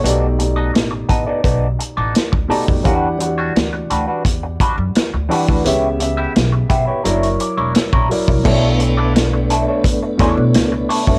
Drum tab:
CC |----------------|----------------|----------------|x---------------|
HH |x-x-x-x-x-x-x-o-|x-x-x-x-x-x-x-o-|x-x-x-x-xxx-x-o-|--x-x-x-x-x-x-o-|
SD |----o-------o---|----o-------o---|----o-------o---|----o-----o-o---|
BD |------o-o----o-o|o-------o-o----o|------o------o-o|o-------o-o----o|